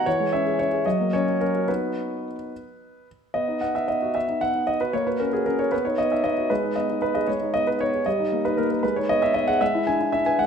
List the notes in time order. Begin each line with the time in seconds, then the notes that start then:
0.06 E3 C#5
0.20 G#3
0.33 C#4 E5
0.46 G#4
0.59 C#4 C#5
0.73 G#4
0.86 F#3 D#5
1.00 A#3
1.13 C#4 C#5
1.28 F#4
1.41 C#4 A#4
1.55 F#4
1.68 B3 D#4 F#4 B4
3.34 B3 D#5
3.48 D#4
3.61 B3 F#5
3.75 D#4 E5
3.88 B3 D#5
4.02 F#4
4.15 B3 E5
4.28 D#4
4.41 B3 F#5
4.55 D#4
4.67 B3 D#5
4.81 F#4 B4
4.93 A#3 C#5
5.07 F#4 B4
5.20 C#4 A#4
5.33 F#4 G#4
5.46 C#4 A#4
5.59 F#4 C#5
5.72 B3 B4
5.85 D#4 C#5
5.98 B3 D#5
6.12 D#4 E5
6.24 B3 D#5
6.38 F#4
6.50 G#3 B4
6.64 D#4
6.76 B3 D#5
6.89 D#4
7.02 B3 B4
7.15 G#4 D#5
7.27 G#3 C#5
7.41 D#4
7.54 B3 D#5
7.67 D#4 B4
7.81 B3 C#5
7.94 G#4
8.06 G3 D#5
8.19 D#4
8.32 A#3
8.45 D#4 B4
8.57 A#3 A#4
8.71 A#4
8.83 G#3 B4
8.96 D#4 C#5
9.09 B3 D#5
9.22 D#4 E5
9.34 B3 D#5
9.48 G#4 F#5
9.61 G#3 E5
9.75 E4
9.87 D4 G#5
10.01 E4
10.12 D4 E5
10.26 B4 G#5
10.39 G#3 F#5